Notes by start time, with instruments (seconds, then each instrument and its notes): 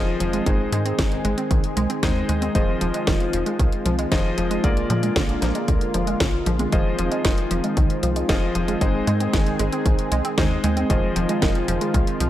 Already playing: analog synth bass F1, analog synth pad D#3 G#3 C4 F4, electric grand piano F3 F4 G#4 C5 D#5
0.20 analog synth bass F1, synth arpeggio sound F3, closed hi-hat
0.33 synth arpeggio sound G#3, closed hi-hat
0.46 analog synth bass G#1, analog synth pad D#3 G#4, synth arpeggio sound D#3, electric grand piano G#3 D#4 G#4 C5 D#5, kick, closed hi-hat
0.72 analog synth bass G#2, synth arpeggio sound G#3, closed hi-hat
0.86 synth arpeggio sound C4, closed hi-hat
0.99 analog synth bass G#1, synth arpeggio sound D#3, kick, snare, closed hi-hat
1.12 closed hi-hat
1.25 analog synth bass G#1, synth arpeggio sound G#3, closed hi-hat
1.38 synth arpeggio sound C4, closed hi-hat
1.51 analog synth bass C2, synth arpeggio sound D#3, kick, closed hi-hat
1.64 closed hi-hat
1.77 analog synth bass C2, synth arpeggio sound G#3, closed hi-hat
1.90 synth arpeggio sound C4, closed hi-hat
2.03 analog synth bass D#2, synth arpeggio sound D#3, electric grand piano G#3 D#4 G#4 C5 D#5, kick, snare, closed hi-hat
2.29 analog synth bass D#2, synth arpeggio sound G#3, closed hi-hat
2.42 synth arpeggio sound C4, closed hi-hat, high conga
2.55 analog synth bass F1, synth arpeggio sound D#3, electric grand piano F3 F4 G#4 C5 D#5, analog synth pad F4, kick, closed hi-hat
2.81 analog synth bass F1, synth arpeggio sound F3, closed hi-hat
2.94 synth arpeggio sound G#3, closed hi-hat
3.07 analog synth bass F1, synth arpeggio sound D#3, kick, snare, closed hi-hat
3.20 closed hi-hat
3.33 analog synth bass F1, synth arpeggio sound F3, closed hi-hat
3.46 synth arpeggio sound G#3, closed hi-hat
3.59 analog synth bass C2, synth arpeggio sound D#3, kick, closed hi-hat
3.72 closed hi-hat
3.86 analog synth bass C2, synth arpeggio sound F3, closed hi-hat
3.99 synth arpeggio sound G#3, closed hi-hat
4.12 analog synth bass F1, synth arpeggio sound D#3, electric grand piano F3 F4 G#4 C5 D#5, kick, snare, closed hi-hat
4.38 analog synth bass F1, synth arpeggio sound F3, closed hi-hat
4.51 synth arpeggio sound G#3, closed hi-hat
4.64 analog synth bass A#1, synth arpeggio sound D3, analog synth pad D3 A#3, electric grand piano A#3 F4 G#4 A#4 D5, kick, closed hi-hat
4.77 closed hi-hat
4.90 analog synth bass A#2, synth arpeggio sound F3, closed hi-hat
5.03 synth arpeggio sound G#3, closed hi-hat
5.16 analog synth bass A#1, synth arpeggio sound D3, kick, snare, closed hi-hat
5.29 closed hi-hat
5.42 analog synth bass A#1, synth arpeggio sound F3, snare, closed hi-hat
5.55 synth arpeggio sound G#3, closed hi-hat
5.68 analog synth bass D2, synth arpeggio sound D3, kick, closed hi-hat
5.81 closed hi-hat
5.94 analog synth bass F1, synth arpeggio sound F3, closed hi-hat
6.07 synth arpeggio sound G#3, closed hi-hat
6.20 analog synth bass A#1, synth arpeggio sound D3, kick, snare, closed hi-hat
6.46 analog synth bass A#1, synth arpeggio sound F3, closed hi-hat
6.59 synth arpeggio sound G#3, closed hi-hat, high conga
6.72 analog synth bass F1, analog synth pad D#3 C4, synth arpeggio sound D#3, electric grand piano F3 F4 G#4 C5 D#5, kick, closed hi-hat
6.99 analog synth bass F1, synth arpeggio sound F3, closed hi-hat
7.12 synth arpeggio sound G#3, closed hi-hat
7.25 analog synth bass F1, synth arpeggio sound D#3, kick, snare, closed hi-hat
7.38 closed hi-hat
7.51 analog synth bass F1, synth arpeggio sound F3, closed hi-hat
7.64 synth arpeggio sound G#3, closed hi-hat
7.77 analog synth bass C2, synth arpeggio sound D#3, kick, closed hi-hat
7.90 closed hi-hat
8.03 analog synth bass C2, synth arpeggio sound F3, closed hi-hat
8.16 synth arpeggio sound G#3, closed hi-hat
8.29 analog synth bass F1, synth arpeggio sound D#3, electric grand piano F3 F4 G#4 C5 D#5, kick, snare, closed hi-hat
8.55 analog synth bass F1, synth arpeggio sound F3, closed hi-hat
8.68 synth arpeggio sound G#3, closed hi-hat
8.81 analog synth bass G#1, analog synth pad D#3 G#4, synth arpeggio sound D#3, electric grand piano G#3 D#4 G#4 C5 D#5, kick, closed hi-hat
9.07 analog synth bass G#2, synth arpeggio sound G#3, closed hi-hat
9.20 synth arpeggio sound C4, closed hi-hat
9.33 analog synth bass G#1, synth arpeggio sound D#3, kick, snare, closed hi-hat
9.46 closed hi-hat
9.59 analog synth bass G#1, synth arpeggio sound G#3, closed hi-hat
9.72 synth arpeggio sound C4, closed hi-hat
9.86 analog synth bass C2, synth arpeggio sound D#3, kick, closed hi-hat
9.99 closed hi-hat
10.12 analog synth bass C2, synth arpeggio sound G#3, closed hi-hat
10.25 synth arpeggio sound C4, closed hi-hat
10.38 analog synth bass D#2, synth arpeggio sound D#3, electric grand piano G#3 D#4 G#4 C5 D#5, kick, snare, closed hi-hat
10.64 analog synth bass D#2, synth arpeggio sound G#3, closed hi-hat
10.77 synth arpeggio sound C4, closed hi-hat, high conga
10.90 analog synth bass F1, analog synth pad D#3 G#3 F4, synth arpeggio sound D#3, electric grand piano F3 F4 G#4 C5 D#5, kick, closed hi-hat
11.16 analog synth bass F1, synth arpeggio sound F3, closed hi-hat
11.29 synth arpeggio sound G#3, closed hi-hat
11.42 analog synth bass F1, synth arpeggio sound D#3, kick, snare, closed hi-hat
11.55 closed hi-hat
11.68 analog synth bass F1, synth arpeggio sound F3, closed hi-hat
11.81 synth arpeggio sound G#3, closed hi-hat
11.94 analog synth bass C2, synth arpeggio sound D#3, kick, closed hi-hat
12.07 closed hi-hat
12.20 analog synth bass C2, synth arpeggio sound F3, closed hi-hat